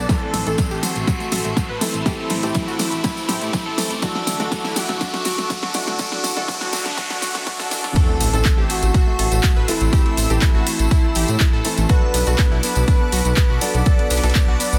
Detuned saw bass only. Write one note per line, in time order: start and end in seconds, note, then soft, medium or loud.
0.34 0.43 A1 medium
0.47 0.55 A1 medium
0.71 0.79 A1 medium
0.96 1.04 A1 medium
1.32 1.41 A1 medium
1.45 1.53 A1 medium
1.69 1.78 A1 medium
1.94 2.02 A1 medium
2.30 2.39 A1 loud
2.43 2.51 A1 medium
2.68 2.76 A1 medium
2.93 3.00 A1 medium
3.29 3.38 A1 medium
3.42 3.50 A2 medium
3.66 3.74 A1 medium
3.91 3.99 A1 medium
4.27 4.36 D2 medium
4.40 4.48 D2 medium
4.65 4.73 D2 medium
4.89 4.97 D2 medium
5.26 5.34 D2 loud
5.38 5.46 D2 medium
5.63 5.71 D2 medium
5.87 5.96 D2 medium
6.24 6.33 D2 medium
6.37 6.45 D2 medium
6.61 6.69 D2 medium
6.86 6.94 D2 medium
7.22 7.31 D2 loud
7.35 7.43 D1 medium
7.60 7.68 D1 medium
7.84 7.92 D1 medium
8.21 8.29 A1 loud
8.34 8.41 A1 medium
8.58 8.66 A1 medium
8.83 8.91 A1 medium
9.19 9.28 A1 loud
9.32 9.40 A1 medium
9.56 9.64 A1 medium
9.81 9.89 A1 medium
10.17 10.26 A1 loud
10.30 10.38 A1 medium
10.55 10.63 A1 medium
10.80 10.87 A1 medium
11.16 11.25 A1 loud
11.29 11.37 A2 medium
11.53 11.61 A1 medium
11.78 11.86 A1 medium
12.14 12.23 B1 loud
12.27 12.35 B1 medium
12.52 12.60 B1 medium
12.76 12.84 B1 medium
13.12 13.21 B1 loud
13.25 13.33 B1 medium
13.50 13.58 B1 medium
13.74 13.82 B1 medium
14.11 14.19 B1 loud
14.24 14.32 B1 medium
14.48 14.56 B1 medium
14.73 14.79 B1 medium